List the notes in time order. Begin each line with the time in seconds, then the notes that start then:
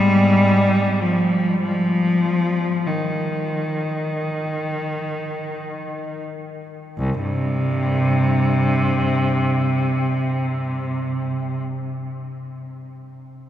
Already playing: G#2 G3
1.02 F3
1.62 F3
2.87 D#3
6.98 C2
7.21 G2 C3